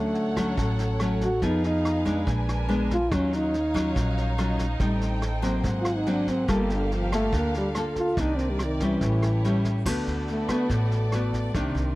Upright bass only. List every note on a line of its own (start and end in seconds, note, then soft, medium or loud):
0.00 0.54 D2 loud
0.57 1.38 A1 medium
1.42 2.23 F2 medium
2.27 3.07 A#1 loud
3.12 3.92 D#2 loud
3.96 4.76 A#1 medium
4.80 5.60 A1 loud
5.64 6.44 G#1 medium
6.48 7.29 G1 loud
7.32 8.13 D2 loud
8.17 8.98 C2 medium
9.01 9.82 A1 medium
9.86 10.06 D2 loud
10.07 10.66 D2 medium
10.70 11.50 A1 medium
11.55 11.74 C2 loud
11.75 11.95 C2 medium